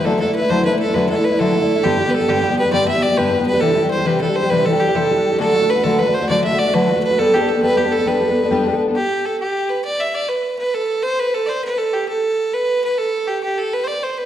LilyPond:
<<
  \new Staff \with { instrumentName = "Fiddle" } { \time 12/8 \key g \major \tempo 4. = 135 a'8 a'8 b'8 c''8 b'8 a'8 b'8 a'8 b'8 a'4. | g'8.~ g'32 b'32 a'8 g'4 b'8 d''8 e''8 d''8 b'4 b'8 | a'4 c''8 b'8 a'8 c''8 b'8 a'8 g'8 a'4. | a'4 b'8 a'8 b'8 c''8 d''8 e''8 d''8 b'4 b'8 |
a'8 g'8 a'8 b'8 g'8 a'8 b'2~ b'8 r8 | g'4 a'8 g'4 b'8 d''8 e''16. e''32 d''8 b'4 b'8 | a'4 c''8 b'8 a'16. d''32 c''8 b'8 a'8 g'8 a'4. | b'4 b'8 a'4 g'8 g'8 a'8 b'16. c''32 d''8 c''8 b'8 | }
  \new Staff \with { instrumentName = "Twelve-string acoustic guitar" } { \time 12/8 \key g \major <d fis a d' e'>8 <fis a d' e'>16 <a d' e'>8 <a d' e'>16 <d fis a d' e'>8 <fis a d' e'>16 <a d' e'>8 <a d' e'>16 <d fis a d' e'>8 <fis a d' e'>16 <a d' e'>8 <a d' e'>16 <d fis a d' e'>8 <fis a d' e'>16 <a d' e'>8 <a d' e'>16 | <g, d g b d' g'>8 <g b d' g'>16 <g b d' g'>8 <g b d' g'>16 <g, d g b d' g'>8 <g b d' g'>16 <g b d' g'>8 <g b d' g'>16 <g, d g b d' g'>8 <g b d' g'>16 <g b d' g'>8 <g b d' g'>16 <g, d g b d' g'>8 <g b d' g'>16 <g b d' g'>8 <g b d' g'>16 | <c e g d' g'>8 <e g d' g'>16 <g d' g'>8 <g d' g'>16 <c e g d' g'>8 <e g d' g'>16 <g d' g'>8 <g d' g'>16 <c e g d' g'>8 <e g d' g'>16 <g d' g'>8 <g d' g'>16 <c e g d' g'>8 <e g d' g'>16 <g d' g'>8 <g d' g'>16 | <d fis a d' fis'>8 <fis a d' fis'>16 <a d' fis'>8 <a d' fis'>16 <d fis a d' fis'>8 <fis a d' fis'>16 <a d' fis'>8 <a d' fis'>16 <d fis a d' fis'>8 <fis a d' fis'>16 <a d' fis'>8 <a d' fis'>16 <d fis a d' fis'>8 <fis a d' fis'>16 <a d' fis'>8 <a d' fis'>16 |
<g b d' a'>8 <g b d' a'>16 <b d' a'>8 <b d' a'>16 <g b d' a'>8 <g b d' a'>16 <b d' a'>8 <b d' a'>16 <g b d' a'>8 <g b d' a'>16 <b d' a'>8 <b d' a'>16 <g b d' a'>8 <g b d' a'>16 <b d' a'>8 <b d' a'>16 | r1. | r1. | r1. | }
>>